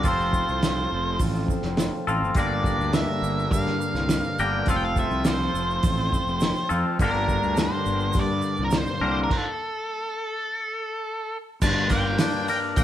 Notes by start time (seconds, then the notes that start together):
0.03 F1 F3 A3 C4 F4 A4, kick, open hi-hat, shaker
0.08 C5
0.20 shaker
0.33 kick, shaker
0.49 C2, shaker
0.62 snare, open hi-hat, shaker
0.92 F1
1.19 A1, kick, open hi-hat, shaker
1.35 shaker
1.48 kick, shaker
1.62 F1, snare, shaker
1.77 snare, open hi-hat, shaker
2.07 A1 F3 C4 F4 A4, shaker
2.22 G1, shaker
2.35 G1 G2 D3 G3 A#3 D4 A#4, kick, open hi-hat, shaker
2.39 G3 D5
2.64 kick, shaker
2.79 D2, shaker
2.93 E5, snare, open hi-hat, shaker
3.22 G1, shaker
3.39 shaker
3.51 G2 F5, kick, open hi-hat, shaker
3.66 snare
3.81 shaker
3.94 C2, snare, shaker
4.09 snare, open hi-hat, shaker
4.24 shaker
4.39 G1 G2 D3 G3 A#3 D4 A#4 G5, shaker
4.66 F1 F3 A3 C4 A4 F5, kick, open hi-hat, shaker
4.70 F4 A4
4.76 G5
4.85 F5
4.96 E5, kick, shaker
5.10 C2, shaker
5.25 C5, snare, open hi-hat, shaker
5.54 F1, shaker
5.70 shaker
5.83 A1, kick, open hi-hat, shaker
6.12 kick, shaker
6.27 F1, shaker
6.40 snare, open hi-hat, shaker
6.56 shaker
6.69 F2 F3 C4 F4 A4, shaker
6.99 G1 G2 D3 G3 A#3 D4 A#4, kick, open hi-hat, shaker
7.04 A#4
7.28 kick, shaker
7.43 D2, shaker
7.57 snare, open hi-hat, shaker
7.63 C5
7.86 G1, shaker
8.00 shaker
8.13 G2, kick, open hi-hat, shaker
8.19 D5
8.42 shaker
8.57 C2, shaker
8.64 A#4
8.71 snare, open hi-hat, shaker
8.77 C5
8.87 shaker
9.00 C2 G2 D3 G3 A#3 D4 A#4
9.24 A#4
9.31 kick, crash
9.37 A4
11.62 G1 G2 G3 A#3 D4 A#4 A5, kick, crash, shaker
11.90 G1 A#3 G5, kick, open hi-hat, shaker
12.18 D4, snare, open hi-hat, shaker
12.48 A#4 G5, open hi-hat, shaker
12.76 A#1 A#3 E5, kick, open hi-hat, shaker